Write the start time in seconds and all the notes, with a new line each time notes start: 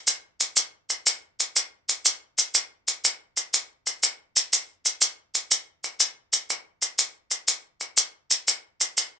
0.07 maracas
0.40 maracas
0.56 maracas
0.90 maracas
1.06 maracas
1.40 maracas
1.56 maracas
1.89 maracas
2.05 maracas
2.38 maracas
2.55 maracas
2.88 maracas
3.05 maracas
3.37 maracas
3.54 maracas
3.87 maracas
4.03 maracas
4.36 maracas
4.53 maracas
4.85 maracas
5.01 maracas
5.35 maracas
5.51 maracas
5.84 maracas
6.00 maracas
6.33 maracas
6.50 maracas
6.82 maracas
6.99 maracas
7.31 maracas
7.48 maracas
7.81 maracas
7.97 maracas
8.31 maracas
8.48 maracas
8.81 maracas
8.97 maracas